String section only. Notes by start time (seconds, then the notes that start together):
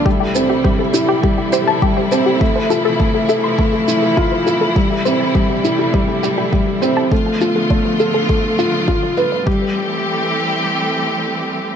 Already playing: A3
0.05 C3 E3 G3 E4
2.41 F3
4.76 C3 G3 A3
7.12 D3 F3 A3 B3 F4
9.47 E3 G3 A3 C4 G4